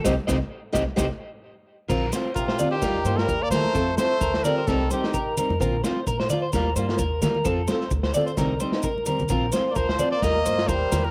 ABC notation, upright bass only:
X:1
M:4/4
L:1/16
Q:"Swing 16ths" 1/4=130
K:Bb
V:1 name="Upright bass" clef=bass
C,, z C,, z3 C,, z C,, z6 z | B,,,2 z2 B,,,2 z2 E,,2 G,,2 E,,2 E,2 | F,,2 z2 D,,2 z2 C,,2 z4 z F,, | B,,,2 z2 B,,2 z2 E,,2 G,,2 E,,2 E,2 |
F,,2 z2 D,,2 z2 C,,2 z4 z C,, | B,,,2 z2 D,,2 z2 E,,2 G,,2 E,,2 =E,,2 |]